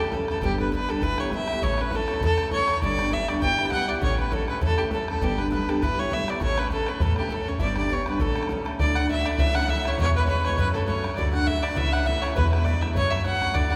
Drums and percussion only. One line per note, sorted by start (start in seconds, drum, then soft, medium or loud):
0.12 bodhran medium
0.28 bodhran medium
0.42 bodhran medium
0.58 bodhran medium
0.72 bodhran medium
0.89 bodhran medium
0.95 bodhran soft
1.02 bodhran medium
1.18 bodhran medium
1.32 bodhran medium
1.48 bodhran medium
1.62 bodhran medium
1.78 bodhran medium
1.91 bodhran medium
2.08 bodhran medium
2.15 bodhran soft
2.21 bodhran medium
2.38 bodhran medium
2.51 bodhran medium
2.68 bodhran medium
2.82 bodhran medium
2.99 bodhran medium
3.12 bodhran medium
3.28 bodhran medium
3.35 bodhran soft
3.42 bodhran medium
3.59 bodhran medium
3.66 bodhran medium
3.72 bodhran medium
4.02 bodhran medium
4.19 bodhran medium
4.32 bodhran medium
4.48 bodhran medium
4.62 bodhran medium
4.78 bodhran medium
4.91 bodhran medium
5.08 bodhran medium
5.22 bodhran medium
5.38 bodhran medium
5.52 bodhran medium
5.69 bodhran medium
5.76 bodhran soft
5.83 bodhran medium
6.12 bodhran medium
6.28 bodhran medium
6.41 bodhran medium
6.58 bodhran medium
6.70 bodhran medium
6.86 bodhran medium
6.93 bodhran soft
7.00 bodhran medium
7.16 bodhran medium
7.29 bodhran medium
7.59 bodhran medium
7.76 bodhran medium
7.90 bodhran medium
8.06 bodhran medium
8.13 bodhran soft
8.19 bodhran medium
8.36 bodhran medium
8.43 bodhran medium
8.49 bodhran medium
8.66 bodhran medium
8.79 bodhran medium
8.95 bodhran medium
9.09 bodhran medium
9.26 bodhran medium
9.38 bodhran loud
9.55 bodhran medium
9.68 bodhran medium
9.85 bodhran medium
9.98 bodhran medium
10.28 bodhran medium
10.45 bodhran medium
10.58 bodhran medium
10.74 bodhran medium
10.88 bodhran medium
11.04 bodhran medium
11.18 bodhran medium
11.34 bodhran medium
11.47 bodhran medium
11.64 bodhran medium
11.76 bodhran medium
11.93 bodhran medium
12.07 bodhran medium
12.23 bodhran medium
12.37 bodhran medium
12.53 bodhran medium
12.66 bodhran medium
12.82 bodhran medium
12.96 bodhran medium
13.12 bodhran medium
13.25 bodhran medium
13.42 bodhran medium
13.56 bodhran medium
13.72 bodhran medium